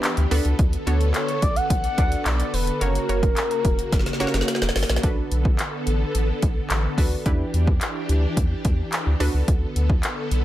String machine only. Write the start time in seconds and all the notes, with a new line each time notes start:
Already playing: E3 D4 G4
0.31 D3 B3 A4
2.81 C#3 A#3 F#4
5.03 D3 B3 A4
7.26 E3 D4 G4
9.20 D3 B3 A4